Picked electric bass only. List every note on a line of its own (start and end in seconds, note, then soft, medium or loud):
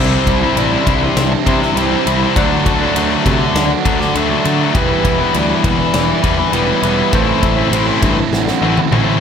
0.00 0.15 C2 medium
0.27 0.45 C2 medium
0.57 0.75 A1 medium
0.87 1.05 C2 medium
1.17 1.35 C2 medium
1.46 1.65 C3 medium
1.76 1.94 C2 medium
2.07 2.24 C2 medium
2.36 2.54 D2 medium
2.66 2.84 D2 medium
2.95 3.14 D2 medium
3.26 3.44 C3 medium
3.55 3.73 D2 medium
3.85 4.03 D2 medium
4.15 4.33 D2 medium
4.46 4.63 D3 loud
4.75 4.93 E1 medium
5.05 5.23 E1 medium
5.35 5.53 D2 medium
5.64 5.82 E1 loud
5.94 6.12 E1 loud
6.24 6.42 E2 loud
6.53 6.71 E1 medium
6.82 7.01 E1 medium
7.13 7.31 A1 medium
7.43 7.61 A1 medium
7.71 7.90 A1 loud
8.02 8.20 G2 medium
8.31 8.50 A1 loud
8.62 8.80 A1 loud
8.91 9.10 A1 medium